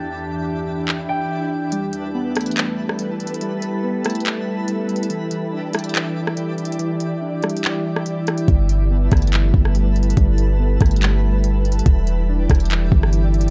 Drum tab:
HH |------------------------------------------------------------------------------------------------|x-----------x-----------------------x--x--x--x--x-----------------------x-----------x---x---x---|x-----------x-----------------------x--x--x--x--x-----------------------x-----------x---x---x---|x-----------x-----------------------x--x--x--x--x-----------------------x-----------x---x---x---|
CP |------------------------------------------------x-----------------------------------------------|------------------------------------------------x-----------------------------------------------|------------------------------------------------x-----------------------------------------------|------------------------------------------------x-----------------------------------------------|
SD |------------------------------------------------------------------------------------------------|------------------------------------r-----------------------------r-----------------------------|------------------------------------r-----------------------------------------------------------|------------------------------------r-----------------------------r-----------------------------|
BD |------------------------------------------------------------------------------------------------|------------------------------------------------------------------------------------------------|------------------------------------------------------------------------------------------------|------------------------------------------------------------------------------------------------|

HH |x-----------x-----------------------x---x---x---x-----------------------x-----------x-----x-----|x-----------x-----------------------x--x--x--x--x-----------------------x-----------x---x---x---|x-----------x-----------------------x--x--x--x--x-----------------------x-----------x---x---x---|x-----------x-----------------------x--x--x--x--x-----------------------x-----------x---x-------|
CP |------------------------------------------------x-----------------------------------------------|------------------------------------------------x-----------------------------------------------|------------------------------------------------x-----------------------------------------------|------------------------------------------------x-----------------------------------------------|
SD |------------------------------------r-----------------------------r-----------------r-----------|------------------------------------r-----------------------------r-----------------------------|------------------------------------r-----------------------------------------------------------|------------------------------------r-----------------------------r-----------------------------|
BD |------------------------------------------------------------------------------------------------|o-----------------------------------o-----------------------o-----------------------------------|o-----------------------------------o-----------------------------------------------------------|o-----------------------------------o-----------------------o-----------------------------------|